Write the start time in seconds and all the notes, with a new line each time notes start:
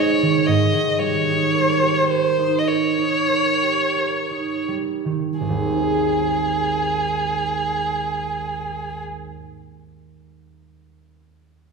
Already playing: G#2 D#3 D#4 G#4 C5 C#5
0.00 G#3
0.22 D#3
0.47 G#2 D#5
0.74 D#3
0.99 G3 C#5
1.25 D#4
1.53 A#4
1.82 G4
2.09 A#4 C5
2.39 D#4
2.59 D#5
2.68 A#4 C#5
2.98 D#4
3.29 A#4
3.62 G4
3.96 A#4
4.31 D#4
4.68 G3
5.05 D#3
5.40 G#1 G#4
5.49 D#2
5.57 G#3
5.66 C4
5.74 D#4
5.83 G#4